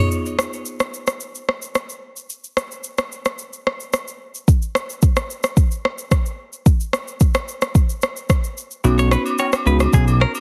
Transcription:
0.11 shaker
0.26 shaker
0.39 cross-stick, shaker
0.53 shaker
0.65 shaker
0.80 cross-stick, shaker
0.94 shaker
1.07 cross-stick, shaker
1.20 shaker
1.35 shaker
1.49 cross-stick
1.62 shaker
1.75 cross-stick, shaker
1.89 shaker
2.16 shaker
2.30 shaker
2.44 shaker
2.57 cross-stick, shaker
2.71 shaker
2.84 shaker
2.98 cross-stick, shaker
3.12 shaker
3.25 cross-stick, shaker
3.38 shaker
3.53 shaker
3.67 cross-stick
3.80 shaker
3.93 cross-stick, shaker
4.08 shaker
4.35 shaker
4.48 kick, shaker
4.62 shaker
4.75 cross-stick, shaker
4.90 shaker
5.02 kick, shaker
5.16 cross-stick, shaker
5.30 shaker
5.43 cross-stick, shaker
5.57 kick, shaker
5.71 shaker
5.85 cross-stick
5.98 shaker
6.11 kick, cross-stick, shaker
6.26 shaker
6.53 shaker
6.66 kick, shaker
6.80 shaker
6.93 cross-stick, shaker
7.08 shaker
7.20 kick, shaker
7.34 cross-stick, shaker
7.48 shaker
7.61 cross-stick, shaker
7.75 kick, shaker
7.89 shaker
8.02 cross-stick, shaker
8.16 shaker
8.29 kick, cross-stick, shaker
8.44 shaker
8.58 shaker
8.71 shaker
8.84 analog synth bass B1, marimba B3 C#4 D#4 F#4, high agogo, shaker
8.98 clean electric guitar C#5, shaker
9.11 clean electric guitar B4, cross-stick, shaker
9.26 high agogo, shaker
9.38 clean electric guitar C#5, low woodblock, shaker
9.52 cross-stick, high agogo, shaker
9.66 analog synth bass C#2, marimba B3 C#4 D#4 F#4, clean electric guitar B4, shaker
9.80 cross-stick, high agogo, shaker
9.93 analog synth bass B1, clean electric guitar G#4, kick, shaker
10.08 high agogo, shaker
10.21 clean electric guitar A#4, cross-stick
10.35 high agogo, shaker

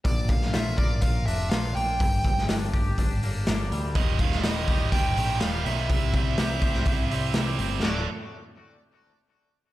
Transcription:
0.05 picked electric bass A#1, clean electric guitar A#2, lead electric guitar D5, kick, open hi-hat
0.28 lead electric guitar F5, kick, open hi-hat
0.42 snare
0.53 picked electric bass A#1, clean electric guitar F4, lead electric guitar E5, snare, open hi-hat
0.77 picked electric bass A#1, clean electric guitar A#4, lead electric guitar D5, kick, open hi-hat
1.01 picked electric bass A#1, clean electric guitar F4, lead electric guitar F5, kick, open hi-hat
1.26 picked electric bass F1, clean electric guitar D4, lead electric guitar E5, open hi-hat
1.50 picked electric bass A#1, clean electric guitar F4, lead electric guitar F5, snare, open hi-hat
1.76 picked electric bass A#1, clean electric guitar A#3, lead electric guitar G5, open hi-hat
2.00 picked electric bass G1, clean electric guitar G2, kick, open hi-hat
2.24 picked electric bass G1, kick, open hi-hat
2.38 snare
2.49 picked electric bass G1, clean electric guitar D4, snare, open hi-hat
2.74 picked electric bass G1, clean electric guitar G4, kick, open hi-hat
2.98 picked electric bass G1, clean electric guitar D4, kick, open hi-hat
3.23 picked electric bass G1, clean electric guitar A#3, open hi-hat
3.47 picked electric bass G1, clean electric guitar D4, snare, open hi-hat
3.71 picked electric bass D2, clean electric guitar G3, open hi-hat
3.95 picked electric bass D#1, distorted electric guitar D#2 A#2 D#3, clean electric guitar D#2, lead electric guitar D#5, kick, open hi-hat
4.19 distorted electric guitar D#2 A#2 D#3, lead electric guitar F5, kick, open hi-hat
4.32 snare
4.42 picked electric bass D#1, distorted electric guitar D#2 A#2, clean electric guitar G3, lead electric guitar D#5, snare, open hi-hat
4.46 distorted electric guitar D#3
4.68 picked electric bass D#1, distorted electric guitar D#2 A#2 D#3, clean electric guitar G4, kick, open hi-hat
4.92 picked electric bass D#1, distorted electric guitar D#2 A#2 D#3, clean electric guitar G3, lead electric guitar G5, kick, open hi-hat
5.17 picked electric bass A#1, distorted electric guitar D#2 A#2 D#3, clean electric guitar D#3, open hi-hat
5.40 picked electric bass D#1, distorted electric guitar D#2 A#2 D#3, clean electric guitar G3, lead electric guitar F5, snare, open hi-hat
5.65 picked electric bass B1, distorted electric guitar D#2 A#2 D#3, clean electric guitar A#2, lead electric guitar E5, open hi-hat
5.89 picked electric bass C2, distorted electric guitar C3 G3 C4, clean electric guitar C3, kick, open hi-hat
6.13 picked electric bass C2, distorted electric guitar C3 G3 C4, kick, open hi-hat
6.38 picked electric bass C2, distorted electric guitar C3 G3 C4, clean electric guitar G4, snare, open hi-hat
6.62 picked electric bass C2, distorted electric guitar C3 G3 C4, clean electric guitar C5, kick, open hi-hat
6.74 snare
6.85 picked electric bass C2, distorted electric guitar C3 G3 C4, clean electric guitar G4, kick, open hi-hat
7.11 picked electric bass C2, distorted electric guitar C3 G3 C4, clean electric guitar E4, open hi-hat
7.34 picked electric bass C2, distorted electric guitar C3 G3 C4, clean electric guitar G4, snare, open hi-hat
7.58 picked electric bass G1, distorted electric guitar C3 G3 C4, clean electric guitar C4, open hi-hat
7.83 picked electric bass D1, clean electric guitar D2 A2 D3 A3 F#4, distorted electric guitar D2 A2 D3, lead electric guitar D5, snare

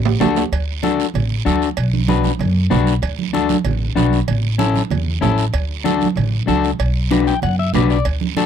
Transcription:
Already playing: upright bass A1
0.05 low timbale
0.20 upright bass D2, clean electric guitar D4 F#4 A4, high conga, low conga, low timbale, short guiro
0.36 low timbale, short guiro
0.52 upright bass D2, cowbell, high conga, long guiro
0.83 clean electric guitar D4 F#4 A4, high conga, short guiro
1.00 short guiro
1.14 upright bass A1, cowbell, high conga, low conga, long guiro
1.45 upright bass D2, clean electric guitar D4 F#4 A4, high conga, short guiro
1.62 short guiro
1.77 upright bass B1, cowbell, high conga, long guiro
1.94 high conga
2.08 clean electric guitar D4 F#4 B4, high conga, short guiro
2.24 high conga, short guiro
2.39 upright bass F#2, cowbell, high conga, low conga, long guiro
2.70 upright bass B1, clean electric guitar D4 F#4 B4, high conga, low conga, low timbale, short guiro
2.87 short guiro
3.02 upright bass D2, cowbell, high conga, long guiro
3.19 high conga
3.33 clean electric guitar D4 F#4 A4, high conga, short guiro
3.49 high conga, short guiro
3.64 upright bass A1, cowbell, high conga, low conga, long guiro
3.96 upright bass B1, clean electric guitar D4 F#4 B4, high conga, short guiro
4.13 short guiro
4.28 upright bass A1, cowbell, high conga, low conga, long guiro
4.58 clean electric guitar C#4 E4 A4, high conga, short guiro
4.74 high conga, short guiro
4.90 upright bass E2, cowbell, high conga, low conga, long guiro
5.21 upright bass A1, clean electric guitar C#4 E4 A4, high conga, low timbale, short guiro
5.38 short guiro
5.53 upright bass D2, cowbell, high conga, long guiro
5.84 clean electric guitar D4 F#4 A4, high conga, short guiro
6.01 high conga, short guiro
6.16 upright bass A1, cowbell, high conga, low conga, long guiro
6.47 upright bass C#2, clean electric guitar D4 F#4 A4, high conga, short guiro
6.64 short guiro
6.79 upright bass B1, cowbell, high conga, long guiro
7.11 clean electric guitar D4 F#4 B4, high conga, short guiro
7.27 clean electric guitar G5, short guiro
7.42 upright bass F#2, clean electric guitar F#5, cowbell, high conga, low conga, long guiro
7.59 clean electric guitar E5
7.73 upright bass B1, clean electric guitar D4 F#4 B4 D5, high conga, low conga, low timbale, short guiro
7.90 clean electric guitar D5, short guiro
8.05 upright bass D2, cowbell, high conga, long guiro
8.21 high conga
8.37 clean electric guitar D4 F#4 A4, high conga, short guiro

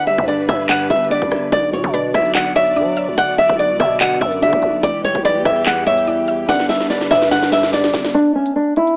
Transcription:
Already playing: synth keys D3, string section G3 D4 B4, synth pluck D5
0.07 synth keys G3, nylon-string guitar E5
0.18 808-style bass G2, kick
0.28 synth keys D3, nylon-string guitar D5, closed hi-hat
0.49 808-style bass G2, nylon-string guitar E5, kick, cross-stick, closed hi-hat
0.69 synth keys D3, nylon-string guitar F#5, clap, closed hi-hat
0.90 808-style bass G1, synth keys G3, nylon-string guitar E5, kick, closed hi-hat
0.97 closed hi-hat
1.04 closed hi-hat
1.10 synth keys D4, nylon-string guitar D5
1.22 808-style bass G1, kick
1.31 808-style bass G1, cross-stick, closed hi-hat
1.52 808-style bass B1, synth keys D3, string section B3 F#4 D5, nylon-string guitar D5, kick, closed hi-hat
1.73 808-style bass B2, synth keys F#3, nylon-string guitar C#5
1.84 808-style bass B2, kick, closed hi-hat
1.94 synth keys D3, synth pluck B4, nylon-string guitar D5
2.14 808-style bass B1, nylon-string guitar E5, kick, cross-stick, closed hi-hat
2.25 closed hi-hat
2.35 synth keys D3, nylon-string guitar F#5, clap
2.56 synth keys F#3, synth pluck C#5, nylon-string guitar E5
2.67 closed hi-hat
2.76 808-style bass F#3, synth keys D4, synth pluck D5
2.97 synth pluck E5, closed hi-hat
3.08 808-style bass B1
3.18 synth keys D3, nylon-string guitar F#5, synth pluck F#5, closed hi-hat
3.38 synth keys F#3, nylon-string guitar E5
3.49 808-style bass B1, kick
3.59 synth keys D3, nylon-string guitar D5, closed hi-hat
3.70 808-style bass C#2
3.80 808-style bass B2, nylon-string guitar E5, kick, cross-stick, closed hi-hat
4.01 synth keys D3, nylon-string guitar F#5, clap, closed hi-hat
4.21 808-style bass F#2, synth keys F#3, nylon-string guitar E5, kick, closed hi-hat
4.32 closed hi-hat
4.42 808-style bass D3, synth keys D4, nylon-string guitar E5
4.53 808-style bass B1, kick
4.62 808-style bass B1, closed hi-hat
4.83 808-style bass E1, synth keys E3, string section E3 G4, nylon-string guitar D5, kick, closed hi-hat
5.04 synth keys G3, nylon-string guitar C#5
5.15 808-style bass B1, kick, closed hi-hat
5.24 synth keys E3, synth pluck B4, nylon-string guitar D5
5.36 808-style bass E2
5.45 808-style bass E2, nylon-string guitar E5, kick, cross-stick, closed hi-hat
5.56 closed hi-hat
5.66 synth keys E3, nylon-string guitar F#5, clap
5.86 synth keys G3, synth pluck C#5, nylon-string guitar E5
5.98 closed hi-hat
6.07 synth keys E4, synth pluck D5
6.28 synth pluck E5, closed hi-hat
6.48 808-style bass G1, synth keys D3, string section G3 D4 B4, synth pluck D5, nylon-string guitar F#5, snare, closed hi-hat
6.60 snare
6.69 synth keys G3, nylon-string guitar E5, snare
6.80 snare
6.90 synth keys D3, nylon-string guitar D5, snare, closed hi-hat
7.01 snare
7.11 808-style bass G2, nylon-string guitar E5, snare, closed hi-hat
7.22 snare
7.31 synth keys D3, nylon-string guitar F#5, snare, closed hi-hat
7.43 snare
7.52 synth keys G3, nylon-string guitar E5, snare, closed hi-hat
7.59 closed hi-hat
7.63 snare, closed hi-hat
7.72 synth keys D4, nylon-string guitar D5, snare
7.84 snare
7.93 808-style bass G1, snare, closed hi-hat
8.05 snare
8.14 nylon-string guitar D4, closed hi-hat
8.35 nylon-string guitar C#4
8.46 closed hi-hat
8.56 nylon-string guitar D4
8.76 nylon-string guitar E4, closed hi-hat
8.87 closed hi-hat

